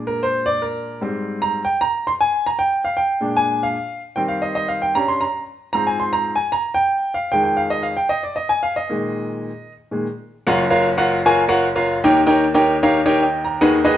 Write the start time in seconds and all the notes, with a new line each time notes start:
Already playing: A#2 G#3 D4
0.07 A#4
0.23 C5
0.46 D5
0.62 A#4
1.01 G#2 G3 C4
1.42 A#5
1.65 G5
1.81 A#5
2.07 C6
2.21 G#5
2.46 A#5
2.59 G5
2.84 F5
2.97 G5
3.21 A#2 G#3 D4
3.37 G#5
3.63 F5
4.16 D#3 G3 C4 G5
4.28 F5
4.42 D#5
4.55 D#5
4.68 F5
4.82 G5
4.95 G2 G3 C#4 A#5
5.08 C6
5.21 A#5
5.73 G#2 F3 C4 A#5
5.87 G#5
6.00 C6
6.13 A#5
6.36 G#5
6.52 A#5
6.74 G5
7.14 F5
7.32 F2 D#3 G#3 G5
7.44 G5
7.57 F5
7.70 D#5
7.83 F5
7.97 G5
8.09 D#5
8.23 D5
8.36 D#5
8.49 G#5
8.63 F5
8.76 D#5
8.89 A#2 D#3 G#3
9.91 A#2 D#3 G#3
10.47 F#1 F#2 F4 F#4 A#4 C#5 F#5
10.70 F4 F#4 A#4 C#5 F5
10.98 F4 F#4 A#4 C#5 F#5
11.26 F4 F#4 A#4 C#5 G#5
11.48 F4 F#4 A#4 C#5 F#5
11.76 F4 F#4 A#4 C#5 F5
12.04 D#2 D#3 D#4 G4 A#4 C#5 G5
12.27 D#4 G4 A#4 C#5 G5
12.54 D#4 G4 A#4 C#5 G5
12.83 D#4 G4 A#4 C#5 F5
13.06 D#4 G4 A#4 C#5 G5
13.22 D#5 G5
13.45 G5 A#5
13.61 D#2 D#3 D#4 F#4 G#4 B4 F#5
13.85 D#4 F#4 G#4 B4 D#5